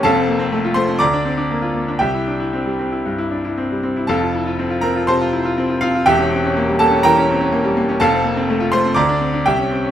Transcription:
\new Staff \with { instrumentName = "Grand piano" } { \time 4/4 \key f \major \tempo 4 = 122 << { <a' f'' a''>4. <c'' c'''>8 <d'' bes'' d'''>2 | <g' e'' g''>2. r4 | <a' f'' a''>4. <bes' bes''>8 <c'' a'' c'''>4. <f' f''>8 | <g' e'' g''>4. <a' a''>8 <bes' g'' bes''>4. r8 |
<a' f'' a''>4. <c'' c'''>8 <d'' bes'' d'''>4 <g' e'' g''>4 | } \\ { <f,, f,>16 c'16 bes16 c'16 a16 f'16 a16 c'16 d,16 d'16 c'16 d'16 bes16 f'16 bes16 d'16 | c,16 e'16 d'16 e'16 c'16 g16 c'16 e'16 g,16 e'16 d'16 e'16 c'16 g16 c'16 e'16 | <f,, f,>16 f'16 e'16 f'16 c'16 f'16 c'16 f'16 c16 f'16 e'16 f'16 c'16 f'16 c'16 f'16 | <e,, e,>16 cis'16 c'16 cis'16 bes16 g16 bes16 cis'16 e16 cis'16 c'16 cis'16 bes16 g16 bes16 cis'16 |
<f,, f,>16 c'16 bes16 c'16 a16 f'16 a16 c'16 d,16 d'16 c'16 d'16 c,16 des'16 c'16 des'16 | } >> }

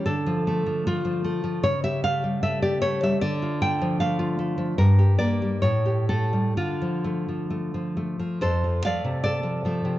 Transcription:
\new Staff \with { instrumentName = "Nylon-string guitar" } { \time 2/4 \key d \minor \tempo 4 = 75 << { a'4 f'4 | cis''16 e''16 f''8 e''16 d''16 cis''16 e''16 | d''8 g''8 f''4 | bes'8 d''8 cis''8 a'8 |
f'4. r8 | \key f \major <a' c''>8 <d'' f''>8 <a' d''>4 | } \\ { d16 f16 a16 f16 a16 f16 a16 f16 | cis16 g'16 a16 g16 a16 g'16 a16 g16 | d16 f'16 a16 f16 a16 f'16 a16 f16 | g,16 g'16 bes16 g16 a,16 g'16 a16 g16 |
d16 f16 a16 f16 a16 f16 a16 f16 | f,16 f16 <f a>16 c8 f16 <f a>16 c16 | } >> }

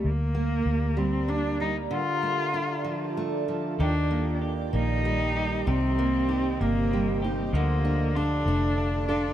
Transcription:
<<
  \new Staff \with { instrumentName = "Ambient pad" } { \time 6/8 \key ees \lydian \tempo 4. = 64 << { <bes' d'' bes''>2. | <a' d'' a''>2. | <d'' g''>2. | <c'' ees''>2. |
<d'' f''>2. | } \\ { g'2. | f'2. | g'2.~ | g'2. |
a'2. | } >> }
  \new Staff \with { instrumentName = "Cello" } { \time 6/8 \key ees \lydian bes4. c'8 d'8 ees'8 | f'2 r4 | d'4 r8 ees'4. | c'4. bes4 r8 |
bes4 d'4. d'8 | }
  \new Staff \with { instrumentName = "Clean electric guitar" } { \time 6/8 \key ees \lydian r2. | r2. | <ees g'>8 bes8 g'8 bes4 g'8 | <ees g'>8 bes8 g'8 bes8 c'8 g'8 |
<f f'>4 f'8 a8 d'8 f'8 | }
  \new Staff \with { instrumentName = "Steel-string acoustic guitar" } { \time 6/8 \key ees \lydian r8 bes4 g8 bes8 g8 | d8 a8 d'8 f8 a8 f8 | ees8 bes4 bes8 g4 | c8 bes8 ees'8 bes8 g8 ees'8 |
d8 d'8 a'8 d'4 a'8 | }
  \new Staff \with { instrumentName = "Fingered electric bass" } { \clef bass \time 6/8 \key ees \lydian d,4 d,2 | r2. | ees,4. bes,,4. | c,4. g,,4. |
d,4. f,,4. | }
>>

